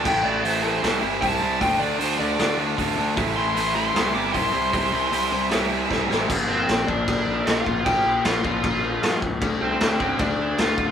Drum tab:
CC |x-------|--------|--------|--------|
HH |--o-o-o-|o-o-o-o-|o-o-o-o-|o-o-o---|
SD |----o---|----o---|----o---|----o-oo|
BD |o-----o-|o-----o-|o-----o-|o-----o-|

CC |x-x-x-x-|x-x-x-x-|x-x-x-x-|
HH |--------|--------|--------|
SD |--o---o-|--o---o-|--o---o-|
BD |o--oo--o|o--oo--o|o--oo--o|